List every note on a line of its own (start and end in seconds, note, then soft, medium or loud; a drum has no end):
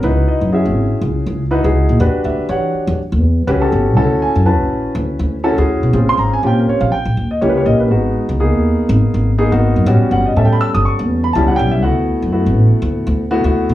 0.03 0.24 C#2 medium
0.03 0.48 D#4 medium
0.03 0.48 E4 medium
0.03 0.48 F#4 medium
0.03 0.48 B4 medium
0.28 0.52 D#5 medium
0.41 0.67 F#2 medium
0.52 1.42 C#4 medium
0.52 1.42 E4 medium
0.52 1.42 F#4 medium
0.52 1.42 G#4 medium
0.52 0.99 E5 medium
0.65 0.87 G#1 medium
1.01 1.13 C#2 medium
1.26 1.59 C#2 medium
1.51 1.63 D#4 medium
1.51 1.63 E4 medium
1.51 1.63 F#4 medium
1.51 1.63 B4 medium
1.64 1.86 C#2 medium
1.64 1.96 D#4 medium
1.64 1.96 E4 medium
1.64 1.97 F#4 medium
1.64 1.97 G#4 medium
1.89 1.99 A#2 medium
2.00 2.12 E2 medium
2.00 2.45 D4 medium
2.00 2.45 F#4 medium
2.00 2.45 G4 medium
2.00 2.45 B4 medium
2.14 muted upright bass stroke soft
2.24 2.36 D2 medium
2.24 2.49 E5 medium
2.38 muted upright bass stroke soft
2.49 2.70 E3 medium
2.49 2.98 D4 medium
2.49 2.98 F#4 medium
2.49 2.98 G4 medium
2.49 2.98 C#5 medium
2.49 2.96 F#5 medium
2.74 muted upright bass stroke soft
2.87 2.97 E2 medium
2.98 muted upright bass stroke soft
3.12 3.43 E2 medium
3.47 3.59 C#2 medium
3.47 3.60 C#4 medium
3.47 3.60 F#4 medium
3.47 3.60 G4 medium
3.47 3.60 B4 medium
3.61 3.93 C#4 medium
3.61 3.94 F#4 medium
3.61 3.94 G4 medium
3.61 3.93 A4 medium
3.72 3.97 G1 medium
3.97 4.18 D2 medium
3.97 4.41 C#4 medium
3.97 4.41 E4 medium
3.97 4.41 F#4 medium
3.97 4.41 A4 medium
4.22 4.46 G#5 medium
4.36 4.60 F#2 medium
4.46 5.35 C#4 medium
4.46 5.35 E4 medium
4.46 5.35 F#4 medium
4.46 5.35 B4 medium
4.46 4.92 A5 medium
4.60 4.81 A1 medium
4.95 5.07 D2 loud
5.19 5.52 D2 medium
5.44 5.56 C#4 medium
5.44 5.56 E4 medium
5.44 5.56 F#4 medium
5.44 5.56 A4 loud
5.58 5.79 D2 medium
5.58 5.90 C#4 medium
5.58 5.90 E4 medium
5.58 5.90 F#4 medium
5.58 5.90 G#4 loud
5.83 5.92 B2 medium
5.93 6.05 A#1 loud
5.93 6.38 C4 medium
5.93 6.38 C#4 medium
5.93 6.38 F4 medium
5.93 6.38 G#4 medium
6.08 6.19 C6 loud
6.08 muted upright bass stroke soft
6.18 6.29 G#1 medium
6.18 6.32 A#5 medium
6.32 6.43 G#5 medium
6.32 muted upright bass stroke soft
6.43 6.64 A#2 medium
6.43 6.92 C4 medium
6.43 6.92 C#4 medium
6.43 6.92 F4 medium
6.43 6.92 G4 medium
6.43 6.58 G5 medium
6.59 6.69 A#4 medium
6.67 6.81 C#5 medium
6.67 muted upright bass stroke soft
6.81 6.90 A#1 medium
6.81 6.91 F5 medium
6.92 7.27 G5 loud
6.92 muted upright bass stroke soft
7.05 7.15 A#1 medium
7.17 7.39 D#2 medium
7.31 7.41 D#5 medium
7.41 7.64 C#2 medium
7.41 7.53 A#3 medium
7.41 7.54 C#4 medium
7.41 7.54 E4 medium
7.41 7.54 G4 medium
7.41 7.49 C#5 medium
7.49 7.57 B4 medium
7.56 7.87 A#3 medium
7.56 7.87 C#4 medium
7.56 7.87 E4 medium
7.56 7.87 G4 medium
7.56 7.65 C#5 medium
7.66 7.90 A#1 medium
7.66 7.79 D#5 loud
7.80 8.25 B4 medium
7.90 8.12 G#1 medium
7.90 8.35 G#3 medium
7.90 8.35 B3 medium
7.90 8.35 D#4 medium
7.90 8.35 F#4 medium
8.29 8.54 C#2 medium
8.40 9.29 A#3 medium
8.40 9.29 B3 medium
8.40 9.29 D#4 medium
8.40 9.29 G#4 medium
8.54 8.75 D#2 medium
8.89 9.01 G#1 loud
9.14 9.47 G#1 medium
9.38 9.50 A#3 medium
9.38 9.50 B3 medium
9.38 9.50 D#4 medium
9.38 9.50 G#4 loud
9.52 9.73 G#1 medium
9.52 9.84 A#3 medium
9.52 9.84 B3 medium
9.52 9.84 D#4 medium
9.52 9.84 F#4 medium
9.76 9.85 F#2 medium
9.86 9.98 A1 loud
9.86 10.31 G3 medium
9.86 10.31 B3 medium
9.86 10.31 C#4 medium
9.86 10.31 F#4 medium
10.01 muted upright bass stroke soft
10.11 10.23 G1 medium
10.11 10.25 F#5 medium
10.25 10.36 D#5 medium
10.25 muted upright bass stroke soft
10.36 10.57 A2 medium
10.36 11.25 G3 medium
10.36 11.25 B3 medium
10.36 11.25 C#4 medium
10.36 11.26 A4 medium
10.36 10.45 E5 medium
10.45 10.52 G5 medium
10.53 10.60 B5 medium
10.61 10.74 E6 loud
10.61 muted upright bass stroke soft
10.74 10.84 G1 medium
10.74 10.85 D#6 medium
10.85 11.21 C#6 medium
10.85 muted upright bass stroke soft
10.99 11.30 E2 medium
11.24 11.34 B5 medium
11.33 11.46 C#2 medium
11.33 11.47 G3 medium
11.33 11.47 B3 medium
11.33 11.47 C#4 medium
11.33 11.47 E4 medium
11.33 11.47 A5 medium
11.47 11.81 G3 medium
11.47 11.81 B3 medium
11.47 11.81 C#4 medium
11.47 11.81 E4 medium
11.47 11.58 F#5 medium
11.56 11.84 B1 medium
11.56 11.71 G5 loud
11.71 11.83 E5 medium
11.82 12.05 D2 loud
11.82 12.28 A3 medium
11.82 12.28 B3 medium
11.82 12.28 E4 medium
11.82 12.28 F#4 medium
11.82 13.26 F#5 medium
12.22 12.48 F#2 medium
12.32 13.21 A3 medium
12.32 13.22 B3 medium
12.32 13.21 E4 medium
12.32 13.21 F#4 medium
12.46 12.67 A1 medium
12.82 12.93 D2 loud
13.07 13.39 D2 medium
13.31 13.43 A3 loud
13.31 13.43 B3 medium
13.31 13.43 E4 medium
13.31 13.43 F#4 loud
13.44 13.65 D2 medium
13.44 13.74 A3 medium
13.44 13.74 B3 medium
13.44 13.74 E4 medium
13.44 13.74 F#4 loud
13.69 13.74 B2 medium